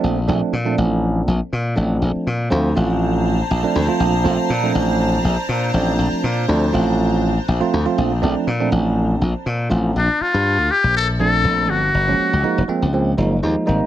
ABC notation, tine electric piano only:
X:1
M:4/4
L:1/16
Q:"Swing 16ths" 1/4=121
K:Bb
V:1 name="Tine electric piano"
[F,A,CD] z [F,A,CD]2 z [F,A,CD]4- [F,A,CD] z4 [F,A,CD]2- | [F,A,CD]2 z2 [F,A,CF] z [F,A,CF]4- [F,A,CF] z2 [F,A,CD] z [F,A,CF]- | [F,A,CF] z [F,A,CF]2 z [F,A,CD]4- [F,A,CD] z4 [F,A,CD]2- | [F,A,CD]2 z2 [F,A,CD] z [F,A,CF]4- [F,A,CF] z2 [F,A,CF] z [F,A,CF]- |
[F,A,CF] z [F,A,CD]2 z [F,A,CD]4- [F,A,CD] z4 [F,A,CF]2 | z8 z2 [F,A,CD]4- [F,A,CD] z | z [F,_A,B,_D]2 z [F,A,B,E] z [F,A,B,C] z [F,A,B,C] z [F,A,B,E] z [F,A,B,E]2 [G,B,CE]2 |]